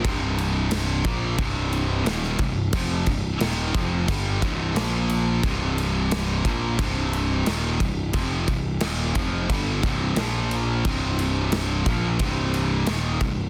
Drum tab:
CC |x-x-x-x-x-x-x-x-|x-x-x-x-x-x-x-x-|x-x-x-x-x-x-x-x-|x-x-x-x-x-x-x-x-|
SD |----o-------oo--|----o-------o---|----o-------o---|----o-------o---|
BD |o-----o-o-----o-|o-o---o-o-o-----|o-----o-o-----o-|o-o---o-o-o-----|

CC |x-x-x-x-x-x-x-x-|
SD |----o-------o---|
BD |o-----o-o-----o-|